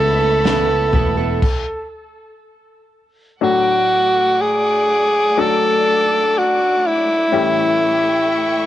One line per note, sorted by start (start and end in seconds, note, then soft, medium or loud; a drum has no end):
0.00 0.95 C#2 medium
0.00 0.89 C#3 medium
0.00 0.20 A3 medium
0.00 1.32 A3 medium
0.00 1.39 A3 medium
0.00 0.21 B3 medium
0.00 1.32 B3 medium
0.00 1.33 C#4 medium
0.00 0.20 E4 medium
0.00 1.33 E4 medium
0.00 0.18 A4 medium
0.00 1.89 A4 loud
0.00 1.41 C#5 medium
0.00 1.41 E5 medium
0.00 1.41 B5 medium
0.19 0.44 B3 soft
0.19 0.44 E4 soft
0.19 0.44 A4 medium
0.44 0.69 C#3 medium
0.44 0.69 A3 medium
0.44 0.69 B3 medium
0.44 0.68 E4 medium
0.44 0.67 A4 medium
0.44 snare loud
0.68 0.93 B3 soft
0.68 0.93 E4 soft
0.68 0.93 A4 soft
0.93 1.39 E1 medium
0.93 1.18 A3 medium
0.93 1.18 B3 medium
0.93 1.18 E4 medium
0.93 1.16 A4 medium
0.93 kick medium
0.93 floor tom medium
1.17 1.44 B3 soft
1.17 1.43 E4 soft
1.17 1.42 A4 medium
1.42 kick loud
1.42 crash medium
3.41 4.84 A2 medium
3.41 5.27 F#3 medium
3.41 5.27 A3 medium
3.41 8.66 A3 medium
3.41 5.27 D4 medium
3.41 5.27 F#4 medium
3.41 4.43 F#4 loud
3.41 7.28 D5 medium
3.41 7.28 F#5 medium
3.41 7.28 D6 medium
4.41 5.42 G#4 loud
5.37 7.22 F#3 medium
5.37 7.23 A3 medium
5.37 7.23 D4 medium
5.37 7.23 F#4 medium
5.37 7.23 A4 medium
5.37 6.40 A4 loud
6.38 6.88 F#4 loud
6.87 8.66 E4 loud
7.32 8.66 A2 medium
7.32 8.66 E3 medium
7.32 8.66 G3 medium
7.32 8.66 A3 medium
7.32 8.66 C#4 medium
7.32 8.66 E4 medium
7.32 8.66 G4 medium
7.32 8.66 E5 medium
7.32 8.66 G5 medium
7.32 8.66 C#6 medium